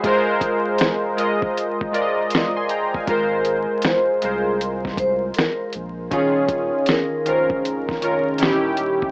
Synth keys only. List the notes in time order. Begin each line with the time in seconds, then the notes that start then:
Already playing: G#4
0.04 G#3 F4 A#4 C5
1.17 G#3 F4 A#4 D#5
1.92 G#3 F4 A#4 D5
2.02 D#5
2.32 C6 D#6
2.57 G#5 C6
2.70 G5 A#5
2.95 F5 G#5
3.07 G#3 F4 A#4 C5
4.22 G#3 F4 A#4 C5
6.11 D#3 C#4 F4 G#4
7.25 D#3 C#4 F4 A#4
8.01 D#3 C#4 F4 A#4
8.39 D#3 C#4 E4 G4